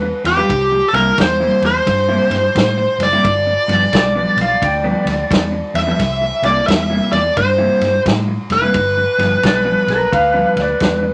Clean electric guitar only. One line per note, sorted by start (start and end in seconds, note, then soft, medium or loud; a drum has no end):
0.02 muted clean electric guitar stroke soft
0.25 muted clean electric guitar stroke soft
0.37 0.50 G3 medium
0.37 0.50 D4 medium
0.37 0.49 F4 medium
0.37 0.49 B4 medium
0.72 muted clean electric guitar stroke medium
0.94 1.09 C3 medium
0.94 1.10 G3 medium
0.94 1.10 A#3 medium
0.94 1.10 E4 medium
1.40 1.67 C3 medium
1.40 1.66 G3 medium
1.40 1.66 A#3 medium
1.40 1.66 E4 medium
1.87 muted clean electric guitar stroke soft
2.09 2.35 C3 medium
2.09 2.35 G3 medium
2.09 2.35 A#3 medium
2.09 2.34 E4 medium
2.77 muted clean electric guitar stroke soft
3.00 muted clean electric guitar stroke soft
3.13 3.25 C3 medium
3.13 3.25 G3 medium
3.13 3.24 A#3 medium
3.13 3.25 E4 medium
3.47 muted clean electric guitar stroke soft
3.68 3.84 G2 medium
3.68 3.84 F3 medium
3.68 3.85 B3 medium
3.68 3.85 D4 medium
4.15 4.41 G2 medium
4.15 4.41 F3 medium
4.15 4.41 B3 medium
4.15 4.41 D4 medium
4.62 muted clean electric guitar stroke soft
4.84 5.10 G2 medium
4.84 5.10 F3 medium
4.84 5.10 B3 medium
4.84 5.10 D4 medium
5.52 muted clean electric guitar stroke soft
5.75 muted clean electric guitar stroke soft
5.87 6.00 G2 medium
5.87 5.99 F3 medium
5.87 5.99 B3 medium
5.87 5.99 D4 medium
6.21 muted clean electric guitar stroke soft
6.43 6.59 C3 medium
6.43 6.60 G3 medium
6.43 6.60 A#3 medium
6.43 6.60 E4 medium
6.90 7.16 C3 medium
6.90 7.16 G3 medium
6.90 7.16 A#3 medium
6.90 7.16 E4 medium
7.37 muted clean electric guitar stroke soft
7.58 7.85 C3 medium
7.58 7.85 G3 medium
7.58 7.85 A#3 medium
7.58 7.84 E4 medium
8.28 muted clean electric guitar stroke medium
8.50 muted clean electric guitar stroke soft
8.62 8.75 C3 medium
8.62 8.75 G3 medium
8.62 8.74 A#3 medium
8.62 8.74 E4 medium
8.97 muted clean electric guitar stroke soft
9.18 9.34 G2 medium
9.18 9.35 F3 medium
9.18 9.35 B3 medium
9.18 9.35 D4 medium
9.65 9.91 G2 medium
9.65 9.91 F3 medium
9.65 9.91 B3 medium
9.65 9.91 D4 medium
10.12 muted clean electric guitar stroke soft
10.34 10.60 G2 medium
10.34 10.60 F3 medium
10.34 10.60 B3 medium
10.34 10.59 D4 medium
11.02 muted clean electric guitar stroke soft